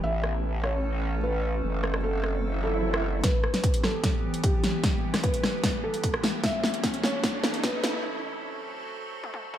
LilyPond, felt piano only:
\new Staff \with { instrumentName = "Felt piano" } { \time 4/4 \key e \minor \tempo 4 = 150 e''4. cis''4. b'4~ | b'4 a'4. a'4. | b'4. a'4. g'4~ | g'4 b'4. a'4. |
e''4. cis''4. b'4 | r1 | }